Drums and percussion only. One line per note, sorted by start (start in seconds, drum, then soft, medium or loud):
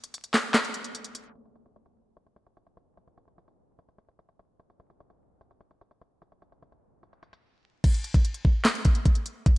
0.04 closed hi-hat medium
0.14 closed hi-hat medium
0.24 closed hi-hat medium
0.34 snare loud
0.34 clap medium
0.34 open hi-hat medium
0.54 snare loud
0.54 clap medium
0.54 closed hi-hat medium
0.64 closed hi-hat medium
0.74 closed hi-hat medium
0.84 closed hi-hat medium
0.95 closed hi-hat medium
1.04 closed hi-hat medium
1.15 closed hi-hat medium
1.35 closed hi-hat medium
1.46 closed hi-hat medium
1.56 closed hi-hat medium
1.66 closed hi-hat medium
1.76 closed hi-hat medium
1.86 closed hi-hat medium
2.17 closed hi-hat medium
2.26 closed hi-hat soft
2.36 closed hi-hat medium
2.47 closed hi-hat medium
2.57 closed hi-hat medium
2.67 closed hi-hat medium
2.77 closed hi-hat medium
2.97 closed hi-hat medium
3.08 closed hi-hat medium
3.18 closed hi-hat medium
3.28 closed hi-hat medium
3.38 closed hi-hat medium
3.48 closed hi-hat medium
3.79 closed hi-hat medium
3.89 closed hi-hat medium
3.98 closed hi-hat medium
4.09 closed hi-hat medium
4.19 closed hi-hat medium
4.29 closed hi-hat medium
4.39 closed hi-hat medium
4.60 closed hi-hat medium
4.70 closed hi-hat medium
4.80 closed hi-hat medium
4.90 closed hi-hat medium
5.00 closed hi-hat medium
5.10 closed hi-hat medium
5.41 closed hi-hat medium
5.51 closed hi-hat medium
5.61 closed hi-hat medium
5.71 closed hi-hat medium
5.81 closed hi-hat medium
5.91 closed hi-hat medium
6.01 closed hi-hat medium
6.22 closed hi-hat medium
6.32 closed hi-hat medium
6.42 closed hi-hat medium
6.52 closed hi-hat medium
6.63 closed hi-hat medium
6.72 closed hi-hat medium
7.03 closed hi-hat medium
7.13 closed hi-hat medium
7.23 closed hi-hat medium
7.33 closed hi-hat medium
7.84 kick loud
7.84 closed hi-hat medium
7.84 crash loud
7.94 closed hi-hat medium
8.04 closed hi-hat medium
8.14 kick loud
8.14 closed hi-hat medium
8.25 closed hi-hat medium
8.34 closed hi-hat medium
8.45 kick medium
8.65 snare loud
8.65 clap medium
8.65 closed hi-hat medium
8.75 closed hi-hat medium
8.85 kick loud
8.85 closed hi-hat medium
8.95 closed hi-hat medium
9.05 kick medium
9.05 closed hi-hat medium
9.15 closed hi-hat medium
9.26 closed hi-hat medium
9.46 kick loud
9.46 closed hi-hat medium